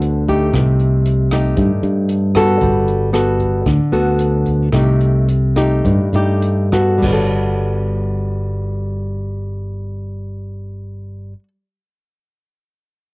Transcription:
Already playing: fingered electric bass D2, nylon-string guitar D3 B3 F#4 A4
0.02 closed hi-hat
0.28 nylon-string guitar A3 D#4 G4, kick, closed hi-hat
0.53 fingered electric bass C2, nylon-string guitar C3, kick, cross-stick, closed hi-hat
0.80 closed hi-hat
1.06 closed hi-hat
1.31 nylon-string guitar A3 D#4 G4, kick, cross-stick, closed hi-hat
1.57 fingered electric bass G2, nylon-string guitar G2, kick, closed hi-hat
1.83 fingered electric bass G2, closed hi-hat
2.09 closed hi-hat
2.35 nylon-string guitar B3 F#4 A4, kick, cross-stick, closed hi-hat
2.61 fingered electric bass G1, nylon-string guitar G3, kick, closed hi-hat
2.88 closed hi-hat
3.13 nylon-string guitar B3 F#4 A4, cross-stick, closed hi-hat
3.39 kick, closed hi-hat
3.66 fingered electric bass D2, nylon-string guitar D3, kick, cross-stick, closed hi-hat
3.92 fingered electric bass D2, nylon-string guitar B3 F#4 A4, closed hi-hat
4.19 closed hi-hat
4.46 kick, closed hi-hat
4.72 fingered electric bass C2, nylon-string guitar C3 A3 D#4 G4, kick, cross-stick, closed hi-hat
5.01 closed hi-hat
5.28 closed hi-hat
5.56 nylon-string guitar A3 D#4 G4, kick, cross-stick, closed hi-hat
5.85 nylon-string guitar G2, fingered electric bass G2, kick, closed hi-hat
6.13 fingered electric bass G2, nylon-string guitar A3 D#4 G4, closed hi-hat
6.42 closed hi-hat
6.72 nylon-string guitar B3 F#4 A4, kick, cross-stick, closed hi-hat
6.98 nylon-string guitar G3
7.02 fingered electric bass G1, nylon-string guitar B3, kick, crash
7.08 nylon-string guitar F#4
7.13 nylon-string guitar A4

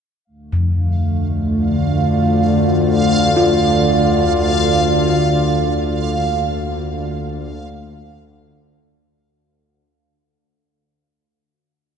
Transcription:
0.25 synth drone D2 D3, analog synth pad A3, synth texture F5
0.53 kettle gongs F2
1.20 analog synth pad F4
1.24 analog synth pad D5
3.37 kettle gongs F4
4.77 analog synth pad D3
5.72 analog synth pad A#3

